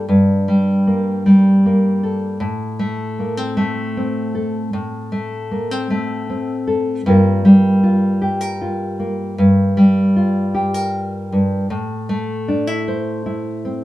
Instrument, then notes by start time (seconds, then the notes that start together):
nylon-string guitar
Already playing: A#3
0.09 G2
0.48 G3
0.87 A#3
1.26 G3
1.66 A#3
2.03 A4
2.40 A2
2.79 A3
3.19 A#3
3.37 C4
3.57 A3
3.97 C4
4.35 A4
4.73 A2
5.12 A3
5.51 A#3
5.71 C4
5.90 A3
6.30 C4
6.67 A4
7.06 G2 G3 A#3 F4 A#4
7.45 G3
7.83 F4
8.22 G4
8.41 A#4
8.62 F4
9.00 A#3
9.38 G2
9.77 G3
10.16 F4
10.54 G4
10.74 A#4
11.32 G2
11.70 A2
12.09 A3
12.48 D4
12.67 E4
12.88 C5
13.26 E4
13.65 C4